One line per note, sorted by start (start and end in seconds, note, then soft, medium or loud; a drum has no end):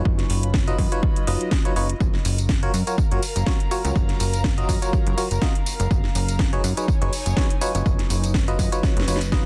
0.00 0.64 F#3 medium
0.00 0.64 D#4 medium
0.00 0.70 D#4 medium
0.00 0.64 F4 medium
0.00 2.00 F4 medium
0.00 0.64 B4 medium
0.00 0.64 C#5 medium
0.00 0.70 C#5 medium
0.00 0.61 G#5 medium
0.00 2.01 B5 medium
0.05 0.23 F#1 loud
0.05 kick loud
0.18 snare soft
0.18 closed hi-hat soft
0.30 0.73 F#1 loud
0.30 open hi-hat loud
0.35 2.75 D#5 medium
0.43 closed hi-hat medium
0.54 kick loud
0.54 snare loud
0.68 0.89 F#3 medium
0.68 0.89 D#4 medium
0.68 0.89 F4 medium
0.68 0.89 B4 medium
0.68 0.89 D#5 loud
0.68 closed hi-hat soft
0.79 0.88 F#2 medium
0.79 kick medium
0.79 open hi-hat medium
0.92 1.25 F#3 medium
0.92 1.25 D#4 medium
0.92 1.25 F4 medium
0.92 1.25 B4 medium
0.92 1.25 C#5 medium
0.92 closed hi-hat medium
1.03 kick loud
1.16 closed hi-hat soft
1.27 1.37 F#1 medium
1.27 1.62 F#3 medium
1.27 1.62 D#4 medium
1.27 1.62 F4 medium
1.27 1.62 B4 medium
1.27 1.62 D#5 loud
1.27 open hi-hat loud
1.41 closed hi-hat medium
1.51 kick loud
1.51 snare loud
1.65 1.74 F#3 medium
1.65 1.73 D#4 medium
1.65 1.73 F4 medium
1.65 1.73 B4 medium
1.65 1.73 C#5 medium
1.65 closed hi-hat soft
1.76 1.94 F#1 medium
1.76 1.87 D#4 medium
1.76 1.87 F4 medium
1.76 1.87 B4 medium
1.76 1.87 C#5 loud
1.76 open hi-hat medium
1.90 closed hi-hat medium
2.00 2.19 F#1 loud
2.00 6.45 A#4 medium
2.00 kick loud
2.00 tambourine soft
2.13 snare soft
2.19 6.45 F5 medium
2.19 6.45 A#5 loud
2.25 2.69 F#1 loud
2.25 open hi-hat loud
2.25 tambourine medium
2.38 closed hi-hat medium
2.38 tambourine soft
2.49 kick loud
2.49 snare loud
2.49 tambourine soft
2.63 2.72 F#3 medium
2.63 2.72 F4 medium
2.63 2.72 F#4 medium
2.63 2.72 A#4 medium
2.63 2.72 C#5 loud
2.63 closed hi-hat soft
2.74 2.83 F#2 medium
2.74 open hi-hat medium
2.74 tambourine medium
2.87 2.96 F#3 medium
2.87 2.96 F4 medium
2.87 2.96 F#4 medium
2.87 2.96 A#4 medium
2.87 2.96 C#5 medium
2.87 closed hi-hat medium
2.87 tambourine soft
2.98 kick loud
2.98 tambourine soft
3.11 3.19 F#1 loud
3.11 3.21 F#3 medium
3.11 3.21 F4 medium
3.11 3.21 F#4 medium
3.11 3.21 A#4 medium
3.11 3.21 C#5 medium
3.11 closed hi-hat soft
3.22 open hi-hat loud
3.22 tambourine medium
3.36 3.44 F#1 medium
3.36 closed hi-hat medium
3.36 tambourine soft
3.46 3.58 F#3 medium
3.46 3.58 F4 medium
3.46 3.58 F#4 medium
3.46 3.58 A#4 medium
3.46 3.58 C#5 medium
3.46 kick loud
3.46 snare loud
3.60 closed hi-hat soft
3.71 3.82 F#3 medium
3.71 3.82 F4 medium
3.71 3.82 F#4 medium
3.71 3.82 A#4 medium
3.71 3.82 C#5 loud
3.71 open hi-hat medium
3.71 tambourine medium
3.85 3.92 C#2 loud
3.85 4.55 F#3 medium
3.85 4.55 F4 medium
3.85 4.55 F#4 medium
3.85 4.55 A#4 medium
3.85 4.55 C#5 medium
3.85 closed hi-hat medium
3.85 tambourine soft
3.96 4.14 F#1 loud
3.96 kick loud
3.96 tambourine soft
4.09 snare soft
4.09 closed hi-hat soft
4.20 4.64 F#1 medium
4.20 open hi-hat loud
4.20 tambourine medium
4.33 closed hi-hat medium
4.33 tambourine soft
4.44 kick loud
4.44 snare loud
4.58 4.79 F#3 medium
4.58 4.79 F4 medium
4.58 4.79 F#4 medium
4.58 4.79 A#4 medium
4.58 4.79 D#5 loud
4.58 closed hi-hat soft
4.69 4.78 F#2 medium
4.69 kick medium
4.69 open hi-hat medium
4.69 tambourine medium
4.82 5.15 F#3 medium
4.82 5.15 F4 medium
4.82 5.15 F#4 medium
4.82 5.15 A#4 medium
4.82 5.15 C#5 loud
4.82 closed hi-hat medium
4.82 tambourine soft
4.93 kick loud
4.93 tambourine soft
5.07 5.14 F#1 loud
5.07 closed hi-hat soft
5.18 5.29 F#3 medium
5.18 5.29 F4 medium
5.18 5.29 F#4 medium
5.18 5.29 A#4 medium
5.18 5.29 C#5 medium
5.18 open hi-hat loud
5.18 tambourine medium
5.31 5.39 F#1 medium
5.31 closed hi-hat medium
5.31 tambourine soft
5.42 5.53 F4 medium
5.42 5.53 F#4 medium
5.42 5.53 A#4 medium
5.42 5.53 D#5 loud
5.42 kick loud
5.42 snare loud
5.42 tambourine soft
5.55 closed hi-hat soft
5.66 9.46 D#4 medium
5.66 open hi-hat medium
5.66 tambourine medium
5.80 5.88 F#1 loud
5.80 closed hi-hat medium
5.80 tambourine soft
5.91 6.09 F#1 loud
5.91 kick loud
5.91 tambourine soft
6.04 snare soft
6.15 6.59 F#1 loud
6.15 open hi-hat loud
6.15 tambourine medium
6.20 8.40 C#5 loud
6.28 closed hi-hat medium
6.28 tambourine soft
6.39 kick loud
6.39 snare loud
6.39 tambourine soft
6.53 6.62 F#3 medium
6.53 6.62 D#4 medium
6.53 6.62 G#4 medium
6.53 6.62 B4 medium
6.53 6.62 C#5 loud
6.53 8.50 G#5 medium
6.53 closed hi-hat soft
6.64 6.73 F#2 medium
6.64 open hi-hat medium
6.64 tambourine medium
6.77 6.86 F#3 medium
6.77 6.86 D#4 medium
6.77 6.86 G#4 medium
6.77 6.86 B4 medium
6.77 6.86 C#5 medium
6.77 closed hi-hat medium
6.77 tambourine soft
6.88 kick loud
6.88 tambourine soft
7.02 7.10 F#1 loud
7.02 7.11 F#3 medium
7.02 7.11 D#4 medium
7.02 7.11 G#4 medium
7.02 7.11 B4 medium
7.02 7.11 C#5 loud
7.02 closed hi-hat medium
7.13 open hi-hat loud
7.13 tambourine medium
7.26 7.34 F#1 medium
7.26 closed hi-hat medium
7.26 tambourine soft
7.37 7.48 F#3 medium
7.37 7.48 D#4 medium
7.37 7.48 G#4 medium
7.37 7.48 B4 medium
7.37 7.48 C#5 medium
7.37 kick loud
7.37 snare loud
7.50 closed hi-hat medium
7.61 7.73 F#3 medium
7.61 7.73 D#4 medium
7.61 7.73 F4 medium
7.61 7.73 B4 medium
7.61 7.73 C#5 loud
7.61 open hi-hat medium
7.61 tambourine medium
7.75 7.83 F#1 loud
7.75 8.45 F#3 medium
7.75 8.45 D#4 medium
7.75 8.45 F4 medium
7.75 8.45 B4 medium
7.75 8.45 C#5 medium
7.75 closed hi-hat medium
7.75 tambourine soft
7.86 kick loud
7.86 tambourine soft
7.97 9.46 B4 medium
7.97 snare soft
7.97 closed hi-hat soft
8.10 8.54 F#1 medium
8.10 open hi-hat loud
8.10 tambourine medium
8.24 closed hi-hat medium
8.24 tambourine soft
8.34 kick loud
8.34 snare loud
8.48 8.69 F#3 medium
8.48 8.69 D#4 medium
8.48 8.69 F4 medium
8.48 8.69 B4 medium
8.48 8.69 D#5 loud
8.48 closed hi-hat soft
8.59 8.69 F#2 medium
8.59 kick medium
8.59 open hi-hat medium
8.59 tambourine medium
8.72 9.05 F#3 medium
8.72 9.05 D#4 medium
8.72 9.05 F4 medium
8.72 9.05 B4 medium
8.72 9.05 C#5 loud
8.72 closed hi-hat medium
8.72 tambourine soft
8.83 kick loud
8.83 snare medium
8.83 tambourine soft
8.97 9.05 F#1 loud
8.97 snare medium
8.97 closed hi-hat medium
9.08 9.46 F#1 medium
9.08 9.19 F#3 medium
9.08 9.19 D#4 medium
9.08 9.19 F4 medium
9.08 9.19 B4 medium
9.08 9.19 C#5 medium
9.08 open hi-hat loud
9.08 tambourine medium
9.16 snare medium
9.21 closed hi-hat medium
9.21 tambourine soft
9.32 9.43 F#3 medium
9.32 9.43 D#4 medium
9.32 9.43 F4 medium
9.32 9.43 B4 medium
9.32 9.43 D#5 loud
9.32 kick loud
9.32 snare medium
9.32 tambourine soft